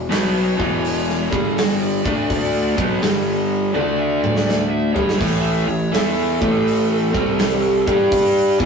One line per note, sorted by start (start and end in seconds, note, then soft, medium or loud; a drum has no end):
0.09 0.55 B1 medium
0.09 0.56 B2 medium
0.09 0.57 F#3 medium
0.09 0.58 B3 medium
0.09 0.35 B4 medium
0.09 snare loud
0.09 open hi-hat medium
0.34 1.29 C#5 loud
0.56 1.28 E1 loud
0.56 1.29 E2 medium
0.56 1.30 B2 loud
0.56 1.30 E3 loud
0.56 kick medium
0.85 open hi-hat soft
1.09 snare soft
1.30 2.01 G1 medium
1.30 2.02 G2 medium
1.30 2.02 D3 medium
1.30 2.03 G3 medium
1.30 1.56 G#4 medium
1.30 kick loud
1.57 1.80 F#4 medium
1.57 snare loud
1.57 open hi-hat medium
1.81 2.75 D5 medium
2.03 2.74 D2 loud
2.03 2.76 D3 medium
2.03 2.76 A3 loud
2.03 2.76 D4 loud
2.03 kick loud
2.30 kick loud
2.30 open hi-hat medium
2.76 3.01 B1 loud
2.76 3.01 B2 loud
2.76 3.01 F#3 loud
2.76 3.01 B3 loud
2.76 kick loud
3.01 3.72 G1 medium
3.01 3.74 G2 medium
3.01 3.72 D3 loud
3.01 3.74 G3 medium
3.01 snare loud
3.01 open hi-hat medium
3.73 4.92 D2 medium
3.73 4.94 D3 medium
3.73 4.94 A3 medium
3.73 4.94 D4 loud
3.73 3.99 D5 loud
3.73 high tom medium
4.00 4.22 E5 medium
4.23 4.46 D5 medium
4.23 mid tom medium
4.36 snare medium
4.47 4.68 D5 medium
4.47 snare medium
4.69 4.92 E5 medium
4.93 5.19 G1 medium
4.93 5.19 G2 medium
4.93 5.18 D3 medium
4.93 5.18 G3 loud
4.93 5.17 C#5 medium
4.93 floor tom medium
5.09 snare medium
5.18 5.66 A1 medium
5.18 5.66 A2 loud
5.18 5.66 E3 loud
5.18 5.66 A3 loud
5.18 5.42 C#5 medium
5.18 kick medium
5.18 open hi-hat medium
5.18 splash medium
5.42 5.67 E5 medium
5.67 5.92 A1 medium
5.67 5.88 A2 medium
5.67 5.88 E3 medium
5.67 5.92 C#5 medium
5.92 6.38 E2 medium
5.92 6.39 E3 medium
5.92 6.40 B3 medium
5.92 6.40 E4 loud
5.92 8.07 A4 medium
5.92 snare loud
5.92 open hi-hat medium
6.41 7.10 A1 medium
6.41 7.12 A2 medium
6.41 7.13 E3 medium
6.41 7.13 A3 loud
6.41 kick loud
6.67 open hi-hat soft
7.12 7.83 C2 medium
7.12 7.84 C3 medium
7.12 7.85 G3 medium
7.12 7.85 C4 medium
7.12 kick loud
7.39 snare loud
7.39 open hi-hat medium
7.86 8.56 G2 medium
7.86 8.58 G3 medium
7.86 8.58 D4 medium
7.86 8.59 G4 loud
7.86 kick loud
8.12 kick loud
8.12 open hi-hat medium
8.59 8.65 E2 loud
8.59 8.65 E3 loud
8.59 8.65 B3 loud
8.59 8.65 E4 loud
8.59 kick loud